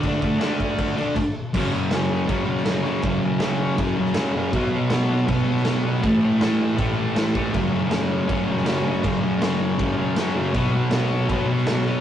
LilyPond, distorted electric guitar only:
\new Staff \with { instrumentName = "Distorted electric guitar" } { \clef bass \time 4/4 \key fis \minor \tempo 4 = 160 <d a d'>8 <a d'>8 <d a d'>4. <a d'>8 r4 | <fis, cis fis>8 <cis fis>8 <fis, cis fis>4 <fis, cis fis>8 <cis fis>8 <fis, cis fis>8 <cis fis>8 | <fis, cis fis>8 <cis fis>8 <fis, cis fis>4 <fis, cis fis>8 <cis fis>8 <fis, cis fis>8 <cis fis>8 | <b, fis b>8 <fis b>8 <b, fis b>4 <b, fis b>8 <fis b>8 <b, fis b>8 <fis b>8 |
<a, e a>8 <e a>8 <a, e a>4 <a, e a>8 <e a>8 <a, e a>8 <e a>8 | <fis, cis fis>8 <cis fis>8 <fis, cis fis>4 <fis, cis fis>8 <cis fis>8 <fis, cis fis>8 <cis fis>8 | <fis, cis fis>8 <cis fis>8 <fis, cis fis>4 <fis, cis fis>8 <cis fis>8 <fis, cis fis>8 <cis fis>8 | <b, fis b>8 <fis b>8 <b, fis b>4 <b, fis b>8 <fis b>8 <b, fis b>8 <fis b>8 | }